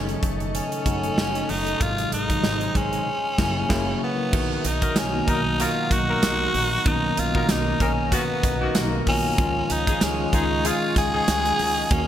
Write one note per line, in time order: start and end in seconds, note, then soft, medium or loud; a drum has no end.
0.00 0.14 F#1 loud
0.00 0.85 C#3 medium
0.00 1.80 D#3 medium
0.00 0.85 F#3 medium
0.00 0.21 A3 medium
0.00 0.86 A3 medium
0.00 0.23 C#4 loud
0.00 0.53 C#4 medium
0.00 0.86 D#4 medium
0.00 1.78 A4 medium
0.00 3.03 D#5 medium
0.00 1.77 C#6 medium
0.09 closed hi-hat soft
0.23 0.58 F#1 medium
0.23 1.48 A3 medium
0.23 kick medium
0.23 closed hi-hat medium
0.40 closed hi-hat soft
0.54 1.16 C#4 medium
0.54 1.52 C#4 medium
0.54 closed hi-hat medium
0.72 closed hi-hat soft
0.85 1.09 F#1 medium
0.85 1.45 C#3 medium
0.85 1.45 F#3 medium
0.85 1.45 A3 medium
0.85 1.45 D#4 medium
0.85 2.15 F#4 medium
0.85 kick medium
0.85 closed hi-hat medium
1.03 closed hi-hat soft
1.17 1.40 F#1 medium
1.17 1.88 C#4 medium
1.17 snare loud
1.35 closed hi-hat medium
1.49 1.72 F#1 medium
1.49 1.88 A3 medium
1.49 1.84 D#4 loud
1.49 open hi-hat medium
1.67 closed hi-hat soft
1.80 2.04 G#1 loud
1.80 2.10 C3 medium
1.80 3.07 D#3 medium
1.80 2.10 F#3 medium
1.80 2.10 G#3 medium
1.80 2.10 D#4 medium
1.80 2.13 F4 loud
1.80 3.06 G#4 medium
1.80 3.06 C6 medium
1.80 kick loud
1.80 closed hi-hat medium
1.98 closed hi-hat medium
2.12 2.35 G#1 medium
2.12 2.74 G#3 medium
2.12 2.78 D#4 loud
2.12 closed hi-hat medium
2.29 3.06 D#3 medium
2.29 3.06 F#3 medium
2.29 3.07 G#3 medium
2.29 3.07 D#4 medium
2.29 kick medium
2.29 closed hi-hat medium
2.43 2.66 G#1 loud
2.43 3.07 C4 medium
2.43 snare loud
2.61 closed hi-hat soft
2.75 2.98 G#1 medium
2.75 3.07 G#3 medium
2.75 4.02 C#4 medium
2.75 kick medium
2.75 closed hi-hat medium
2.93 closed hi-hat soft
3.07 4.32 A#4 medium
3.07 4.32 E5 medium
3.07 4.32 C#6 medium
3.38 3.61 F#1 loud
3.38 3.60 C#3 loud
3.38 3.60 F#3 loud
3.38 3.61 A#3 medium
3.38 3.61 E4 loud
3.38 kick loud
3.38 snare loud
3.38 crash medium
3.69 3.92 F#1 medium
3.69 3.92 C#3 loud
3.69 3.92 F#3 loud
3.69 3.92 A#3 medium
3.69 3.92 E4 loud
3.69 kick loud
3.69 snare loud
3.69 crash medium
4.04 4.68 B3 medium
4.32 4.56 B1 loud
4.32 4.83 D#3 medium
4.32 6.86 D#3 medium
4.32 4.84 B3 medium
4.32 4.84 F#4 medium
4.32 4.83 A#4 medium
4.32 12.07 D#5 medium
4.32 9.34 A#5 medium
4.32 kick loud
4.32 crash loud
4.64 4.87 B1 loud
4.64 5.28 D#4 medium
4.64 5.00 D#4 medium
4.64 closed hi-hat medium
4.82 4.94 F#3 medium
4.82 4.94 D#4 medium
4.82 4.94 A#4 medium
4.82 kick medium
4.82 closed hi-hat medium
4.96 5.19 B1 loud
4.96 6.21 A#3 medium
4.96 5.31 C#4 medium
4.96 snare loud
4.96 closed hi-hat medium
4.96 tambourine medium
5.13 5.22 D#3 medium
5.13 5.22 A#3 medium
5.13 5.23 B3 medium
5.13 5.23 F#4 medium
5.27 5.63 B1 loud
5.27 6.08 B2 medium
5.27 6.07 D#3 medium
5.27 5.39 F#3 medium
5.27 6.08 F#3 medium
5.27 6.08 A#3 medium
5.27 5.39 D#4 medium
5.27 5.91 D#4 medium
5.27 5.63 D#4 medium
5.27 5.39 A#4 loud
5.27 kick medium
5.27 closed hi-hat medium
5.59 5.71 F#3 medium
5.59 5.71 D#4 medium
5.59 5.94 F4 medium
5.59 8.11 F#4 medium
5.59 5.71 A#4 loud
5.59 closed hi-hat loud
5.91 6.14 B1 medium
5.91 6.54 D#4 medium
5.91 6.89 F#4 loud
5.91 kick medium
5.91 closed hi-hat medium
6.08 6.52 F#3 medium
6.08 6.52 D#4 loud
6.08 6.52 A#4 loud
6.22 6.45 B1 medium
6.22 7.48 A#3 medium
6.22 snare loud
6.22 closed hi-hat medium
6.22 tambourine medium
6.54 6.77 A#1 medium
6.54 7.17 D#4 medium
6.54 open hi-hat medium
6.85 7.09 B1 loud
6.85 7.15 D#3 medium
6.85 9.38 D#3 medium
6.85 7.15 A#3 medium
6.85 7.16 B3 medium
6.85 7.16 C#4 medium
6.85 7.21 D#4 loud
6.85 11.87 F5 medium
6.85 kick loud
6.85 closed hi-hat medium
7.17 7.40 B1 loud
7.17 7.80 D#4 medium
7.17 7.52 F4 medium
7.17 closed hi-hat medium
7.34 8.12 B2 medium
7.34 8.11 D#3 medium
7.34 7.47 F#3 medium
7.34 8.12 A#3 medium
7.34 7.47 D#4 medium
7.34 8.12 F#4 medium
7.34 7.47 A#4 loud
7.34 kick medium
7.49 7.72 B1 loud
7.49 8.74 A#3 medium
7.49 7.83 D#4 medium
7.49 snare loud
7.49 closed hi-hat medium
7.49 tambourine medium
7.80 8.16 B1 medium
7.80 7.92 F#3 medium
7.80 8.13 C#4 medium
7.80 7.92 D#4 medium
7.80 8.43 D#4 medium
7.80 7.92 A#4 loud
7.80 kick medium
7.80 closed hi-hat medium
8.12 8.23 D#3 medium
8.12 8.23 B3 loud
8.12 8.77 B3 medium
8.12 9.45 F#4 medium
8.12 8.23 F#4 loud
8.12 kick medium
8.12 closed hi-hat loud
8.43 8.66 B1 loud
8.43 9.06 D#4 medium
8.43 kick medium
8.43 closed hi-hat medium
8.61 9.05 D#3 medium
8.61 9.05 A#3 medium
8.61 9.05 F#4 loud
8.75 8.98 B1 loud
8.75 9.45 A#3 medium
8.75 snare loud
8.75 closed hi-hat medium
8.75 tambourine medium
9.06 9.30 B1 medium
9.06 9.27 D#3 medium
9.06 9.28 A#3 medium
9.06 9.28 B3 medium
9.06 9.73 C#4 loud
9.06 9.70 D#4 medium
9.06 9.28 F4 medium
9.06 kick medium
9.06 open hi-hat medium
9.38 9.61 C#2 loud
9.38 9.88 D#3 medium
9.38 11.91 F3 medium
9.38 9.89 G#3 medium
9.38 9.89 C#4 medium
9.38 9.89 F4 medium
9.38 11.89 G#4 medium
9.38 12.07 C#6 medium
9.38 kick loud
9.38 closed hi-hat medium
9.70 9.93 C#2 medium
9.70 9.87 C#4 medium
9.70 10.05 D#4 loud
9.70 closed hi-hat medium
9.87 9.99 F3 medium
9.87 10.32 D#4 medium
9.87 9.99 D#4 medium
9.87 9.99 G#4 medium
9.87 kick medium
9.87 closed hi-hat medium
10.01 10.24 C#2 loud
10.01 11.27 G#3 medium
10.01 10.36 C#4 medium
10.01 snare loud
10.01 closed hi-hat medium
10.01 tambourine medium
10.18 10.27 D#3 medium
10.18 10.27 G#3 medium
10.18 10.28 C#4 medium
10.18 10.28 F4 medium
10.32 10.68 C#2 loud
10.32 11.13 D#3 medium
10.32 10.44 F3 medium
10.32 11.13 G#3 medium
10.32 11.13 C#4 medium
10.32 10.44 D#4 medium
10.32 10.96 D#4 medium
10.32 10.68 D#4 loud
10.32 11.13 F4 medium
10.32 10.44 G#4 loud
10.32 kick medium
10.32 closed hi-hat medium
10.65 10.76 F3 loud
10.65 10.76 D#4 loud
10.65 11.98 F4 medium
10.65 10.97 F4 loud
10.65 10.76 G#4 loud
10.65 closed hi-hat loud
10.96 11.19 C#2 loud
10.96 11.59 D#4 medium
10.96 11.94 G#4 loud
10.96 kick medium
10.96 closed hi-hat medium
11.13 11.57 F3 medium
11.13 11.57 D#4 loud
11.13 11.57 G#4 loud
11.28 11.51 C#2 loud
11.28 11.90 G#3 medium
11.28 snare loud
11.28 closed hi-hat medium
11.28 tambourine medium
11.45 closed hi-hat medium
11.59 11.82 C#2 medium
11.59 12.07 D#4 medium
11.59 open hi-hat medium
11.90 12.07 D#2 loud
11.90 12.07 D#3 medium
11.90 12.07 A#3 medium
11.90 12.07 C#4 medium
11.90 12.07 C#4 loud
11.90 12.07 F#4 medium
11.90 kick loud
11.90 closed hi-hat medium